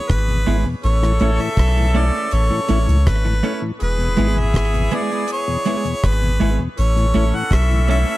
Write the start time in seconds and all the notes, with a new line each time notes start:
Already playing: E3 B3 G#4 C#5
0.10 G#1 B4, kick, cross-stick, closed hi-hat
0.28 E2 B2, closed hi-hat
0.46 G#1 G#3 B3 E4 G#4, open hi-hat
0.65 E2 B2, muted clean electric guitar stroke
0.83 A1 C#3 E3 A4 C#5, closed hi-hat
1.03 A2 E3, cross-stick, closed hi-hat
1.19 A1 A3 C#4 E4 A4, closed hi-hat
1.39 A2 E3 E5
1.57 B1, kick, cross-stick, closed hi-hat
1.77 A2 E3, closed hi-hat
1.94 A3 C#4 E4 A4 D5, closed hi-hat
2.13 A3 C#4 E4 A4, closed hi-hat
2.31 A1 C#5, closed hi-hat
2.50 A2 E3, muted clean electric guitar stroke
2.68 A1 A3 C#4 E4 A4, closed hi-hat
2.87 C#2 A2 E3, closed hi-hat
3.07 G#1 B4, kick, cross-stick, closed hi-hat
3.25 A2 E3, muted clean electric guitar stroke, closed hi-hat
3.43 A3 C#4 E4 A4, closed hi-hat
3.61 A2 E3
3.80 E1 E3 B3 G#4 B4, closed hi-hat
3.98 E2 B2, closed hi-hat
4.16 G#1 G#3 B3 E4 G#4, closed hi-hat
4.36 E2 B2 E5
4.54 kick, cross-stick, closed hi-hat
4.74 E2 B2, closed hi-hat
4.91 G#3 B3 E4 G#4 D5, closed hi-hat
5.11 G#3 B3 E4 G#4, closed hi-hat
5.28 closed hi-hat
5.33 C#5
5.48 E2 B2
5.65 G#3 B3 E4 G#4, closed hi-hat
5.85 E2 B2, closed hi-hat
6.04 G#1 B4, kick, cross-stick, closed hi-hat
6.22 E2 B2, closed hi-hat
6.40 G#1 G#3 B3 E4 G#4, closed hi-hat
6.59 E2 B2, muted clean electric guitar stroke
6.77 A1 E3 C#4 A4 C#5, closed hi-hat
6.96 A2 E3, closed hi-hat
7.14 A1 A3 C#4 E4 A4, closed hi-hat
7.34 A2 E3 F#5
7.51 B1 E5, kick, cross-stick, closed hi-hat
7.70 A2 E3, closed hi-hat
7.88 A3 C#4 E4 A4 E5, closed hi-hat
8.07 A3 C#4 E4 A4, closed hi-hat